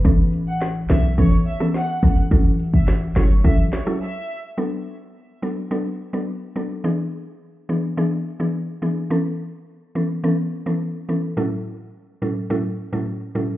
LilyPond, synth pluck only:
\new Staff \with { instrumentName = "Synth pluck" } { \time 4/4 \key b \minor \tempo 4 = 106 <e b cis' a'>4 r8 <e b cis' a'>16 r16 <e b cis' a'>16 r8 <e b cis' a'>8. <e b cis' a'>8 | <fis cis' e' a'>4 r8 <fis cis' e' a'>16 r16 <fis cis' e' a'>16 r8 <fis cis' e' a'>16 r4 | <fis b d' a'>4 r8 <fis b d' a'>16 r16 <fis b d' a'>16 r8 <fis b d' a'>8. <fis b d' a'>8 | <e b d' gis'>4 r8 <e b d' gis'>16 r16 <e b d' gis'>16 r8 <e b d' gis'>8. <e b d' gis'>8 |
<e b cis' a'>4 r8 <e b cis' a'>16 r16 <e b cis' a'>16 r8 <e b cis' a'>8. <e b cis' a'>8 | <a, fis cis' e' a'>4 r8 <a, fis cis' e' a'>16 r16 <a, fis cis' e' a'>16 r8 <a, fis cis' e' a'>8. <a, fis cis' e' a'>8 | }